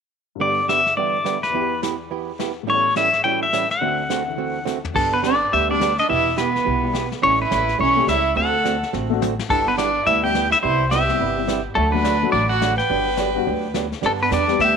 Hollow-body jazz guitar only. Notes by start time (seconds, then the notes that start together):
0.40 G2 D3 G3 B3 D4 G4
0.68 G2 D3 G3 B3 D4 G4
0.97 G2 D3 G3 B3 D4 G4
1.24 G2 D3 G3 B3 D4 G4
1.54 E3 B3 E4 G4
1.83 E3 B3 E4 G4
2.11 E3 B3 E4 G4
2.39 E3 B3 E4 G4
2.67 A2 E3 G3 C#4 E4 A4
2.96 A2 E3 G3 C#4 E4 A4
3.24 A2 E3 G3 C#4 E4 A4
3.53 A2 E3 G3 C#4 E4 A4
3.81 D3 A3 C4 F#4 A4
4.10 D3 A3 C4 F#4 A4
4.37 D3 A3 C4 F#4 A4
4.65 D3 A3 C4 F#4 A4
4.94 D3 G3 B3 D4 G4
5.23 D3 G3 B3 D4 G4
5.52 D3 G3 B3 D4 G4
5.80 D3 G3 B3 D4 G4
6.08 E3 B3 E4 G4
6.36 E3 B3 E4 G4
6.65 E3 B3 E4 G4
6.93 E3 B3 E4 G4
7.22 E3 G3 C#4 E4 A4
7.51 E3 G3 C#4 E4 A4
7.78 E3 G3 C#4 E4 A4
8.07 E3 G3 C#4 E4 A4
8.36 D3 A3 C4 F#4 A4
8.64 D3 A3 C4 F#4 A4
8.93 D3 A3 C4 F#4 A4
9.22 D3 A3 C4 F#4 A4
9.50 G3 B3 E4 G4
9.77 G3 B3 E4 G4
10.06 G3 B3 E4 G4
10.34 G3 B3 E4 G4
10.63 C3 G3 B3 E4 G4
10.91 C3 G3 B3 E4 G4
11.20 C3 G3 B3 E4 G4
11.48 C3 G3 B3 E4 G4
11.76 D3 F#3 A3 D4 F#4
12.04 D3 F#3 A3 D4 F#4
12.33 D3 F#3 A3 D4 F#4
12.62 D3 F#3 A3 D4 F#4
12.90 D3 F#3 B3 D4 G4
13.18 D3 F#3 B3 D4 G4
13.47 D3 F#3 B3 D4 G4
13.74 D3 F#3 B3 D4 G4
14.01 D3 G3 B3 D4 G4
14.31 D3 G3 B3 D4 G4
14.59 D3 G3 B3 D4 G4